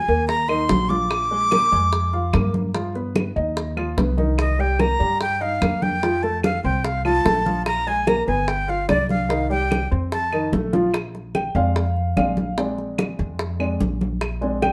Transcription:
Already playing: G#5
0.08 D#2 A#3 A#4, high conga
0.28 A#5, high bongo, high conga
0.48 D#3 D#4 C6, high bongo, high conga, claves
0.69 A#1 F#3 F#4, high bongo, low bongo, high conga
0.89 F3 F4 D6, high bongo, high conga
1.11 high bongo, claves
1.31 G#3 G#4, high conga
1.51 A#3 A#4, high bongo, high conga, claves
1.72 F2 G#3 G#4, high bongo, high conga
1.93 high bongo, high conga
2.13 F4 F5, high bongo, high conga
2.33 G2 A#3 A#4, high bongo, low bongo, high conga, claves
2.54 high bongo, high conga
2.75 F3 F4, high bongo, high conga
2.95 B3 B4, high bongo, high conga
3.16 high bongo, high conga, claves
3.36 D#2 D#4 D#5, high conga
3.57 high bongo, high conga
3.77 F3 F4, high bongo, high conga, claves
3.97 C2 B3 B4, high bongo, low bongo, high conga
4.18 D#3 D#4, high bongo, high conga
4.38 D#5, high bongo, high conga, claves
4.59 G3 G4 G5, high conga
4.79 A#3 A#4 A#5, high bongo, high conga, claves
4.99 G2 G3 G4, high bongo, high conga
5.21 G5, high bongo, high conga
5.41 D#4 D#5 F5, high bongo, high conga
5.61 F2 A#3 A#4, high bongo, low bongo, high conga, claves
5.82 G5, high bongo, high conga
6.03 F3 F4, high bongo, high conga
6.23 A3 A4 A5, high bongo, high conga
6.43 F5, high bongo, high conga, claves
6.64 C2 C4 C5 G5, high conga
6.85 F5, high bongo, high conga
7.05 F3 F4 A5, high bongo, high conga, claves
7.25 A#1 A3 A4, high bongo, low bongo, high conga
7.46 F3 F4, high bongo, high conga
7.66 A#5, high bongo, high conga, claves
7.87 G#3 G#4 G#5, high conga
8.07 A#3 A#4 A#5, high bongo, high conga, claves
8.27 G1 B3 B4 G#5, high bongo, high conga
8.48 G5, high bongo, high conga
8.68 F4 F5, high bongo, high conga
8.89 C2 D4 D5, high bongo, low bongo, high conga, claves
9.09 F5, high bongo, high conga
9.29 D#3 D#4, high bongo
9.50 G3 G4 G5, high bongo, high conga
9.71 high bongo, high conga, claves
9.91 F2 C4 C5, high conga
10.12 A5, high bongo, high conga
10.33 D#3 D#4, high bongo, high conga, claves
10.53 A#1 A3 A4, high bongo, high conga
10.73 F3 F4, low bongo, high conga
10.94 high bongo, high conga, claves
11.15 high bongo, high conga
11.35 G5, high bongo, high conga, claves
11.55 F2 G#3 C4 D4 F5, high bongo, high conga
11.76 high bongo, high conga
11.96 high conga
12.16 A#1 G#3 C4 D4 F5, high bongo, low bongo, high conga, claves
12.37 high bongo, high conga
12.58 G#3 C4 D4, high bongo, high conga
12.78 high bongo, high conga
12.98 high bongo, high conga, claves
13.19 F2, high bongo, high conga
13.39 high bongo, high conga
13.60 G#3 C4 D4, high conga, claves
13.80 A#1, high bongo, low bongo, high conga
14.01 high bongo, high conga
14.21 high bongo, high conga, claves
14.41 G#3 C4 D4, high bongo, high conga
14.62 G5, high bongo, high conga, claves

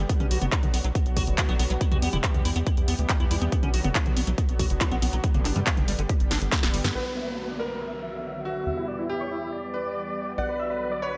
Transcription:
0.09 D3 F#3 B3 F#4, kick, closed hi-hat
0.20 B1 D3 F#3 B3 C#4 F#4, closed hi-hat, mid tom
0.31 B1 D3 F#3 B3 F#4, open hi-hat
0.42 F#1 B3, closed hi-hat, mid tom
0.52 D3 F#3 B3 E4 F#4, kick, clap, closed hi-hat
0.63 B1, closed hi-hat, mid tom
0.74 B1 B3, open hi-hat
0.84 B1 F#3, closed hi-hat
0.95 B3, kick, closed hi-hat
1.06 B1 D3 F#3 B3 F#4, closed hi-hat
1.17 B1 F#4, kick, open hi-hat, mid tom
1.27 F#1 D3 F#3 B3 F#4, closed hi-hat
1.38 E4, kick, clap, closed hi-hat
1.49 B1 D3 F#3 B3 F#4, closed hi-hat
1.59 B1 D3 F#3 B3 F#4, open hi-hat
1.70 B1 F#3, closed hi-hat
1.81 E3 G3 B3 E4 G4, kick, closed hi-hat
1.92 E2 E3 G3 B3 F#4 G4, closed hi-hat, mid tom
2.02 E2 E3 G3 B3 G4, open hi-hat
2.13 E1 E4, closed hi-hat, mid tom
2.24 E3 G3 A#3 B3 G4, kick, clap, closed hi-hat
2.34 E2, closed hi-hat, mid tom
2.45 E2 E4, open hi-hat
2.56 E2 B3, closed hi-hat
2.66 E4, kick, closed hi-hat
2.77 E2 E3 G3 B3 G4, closed hi-hat
2.88 E2 B3, open hi-hat
2.99 D2 E3 G3 B3 G4, closed hi-hat
3.09 A#3, kick, clap, closed hi-hat
3.20 E2 E3 G3 B3 E4 G4, closed hi-hat
3.31 E2 E3 G3 B3 E4 G4, open hi-hat
3.42 E2 B3, closed hi-hat
3.52 D3 F#3 B3 F#4, kick, closed hi-hat
3.63 B1 D3 F#3 B3 C#4 F#4, closed hi-hat, mid tom
3.74 B1 D3 F#3 B3 F#4, open hi-hat
3.84 F#1 B3, closed hi-hat, mid tom
3.95 D3 F#3 B3 E4 F#4, kick, clap, closed hi-hat
4.06 B1, closed hi-hat, mid tom
4.17 B1 B3, open hi-hat
4.27 B1 F#3, closed hi-hat
4.38 B3, kick, closed hi-hat
4.49 B1 D3 F#3 B3 F#4, closed hi-hat
4.59 B1 F#4, kick, open hi-hat, mid tom
4.70 F#1 D3 F#3 B3 F#4, closed hi-hat
4.81 E4, kick, clap, closed hi-hat
4.92 B1 D3 F#3 B3 F#4, closed hi-hat
5.02 B1 D3 F#3 B3 F#4, open hi-hat
5.13 B1 F#3, closed hi-hat
5.24 D3 G3 B3 G4, kick, closed hi-hat
5.34 G1 D3 G3 A#3 B3 G4, closed hi-hat, mid tom
5.45 G1 D3 G3 B3 D4 G4, clap, open hi-hat
5.56 G2 G3, closed hi-hat, mid tom
5.67 D3 G3 B3 C#4 G4, kick, clap, closed hi-hat
5.77 G1, closed hi-hat, mid tom
5.88 G1 G3, open hi-hat
5.99 G1 D3, closed hi-hat
6.09 G4, kick, closed hi-hat
6.20 G1 D3 G3 B3 G4, closed hi-hat
6.31 G1 D4, snare, open hi-hat
6.42 G1 D3 G3 B3 G4, closed hi-hat
6.52 C#4, kick, snare, clap, closed hi-hat
6.63 D1 D3 G3 B3 G4, snare, closed hi-hat
6.74 G1 D3 G3 B3 G4, open hi-hat
6.84 G2 D3, snare, closed hi-hat
6.95 B1 D3 F#3 B3 F#4 B4 F#5, downlifter
7.06 D3 F#3 B3 F#4 B4
7.17 D3 F#3 B3 F#4 E5
7.27 B4
7.38 D3 F#3 B3 F#4 B4
7.49 D5
7.59 A#4 B4
7.70 B4
7.81 E5
7.92 D3 F#3 B3 F#4
8.13 D3 F#3 B3 F#4
8.35 D3 F#3 B3 F#4
8.45 D3 F#3 B3 F#4
8.67 E2 E3 G3 B3 G4 E5
8.77 E3 G3 B3 E4 G4
8.88 E3 G3 B3 G4 D5
8.99 E4
9.09 E3 G3 B3 E4 G4
9.20 C#5
9.31 E4
9.42 E4
9.52 D5
9.63 E3 G3 B3 G4
9.74 B4
9.85 E3 G3 B3 G4
10.06 E3 G3 B3 G4
10.17 E3 G3 B3 G4
10.38 B1 D3 F#3 B3 F#4 D5 F#5
10.49 D3 F#3 B3 F#4 B4
10.59 D3 F#3 B3 F#4 E5
10.70 B4
10.81 D3 F#3 B3 F#4 B4
10.92 D5
11.02 B4 C#5
11.13 B4

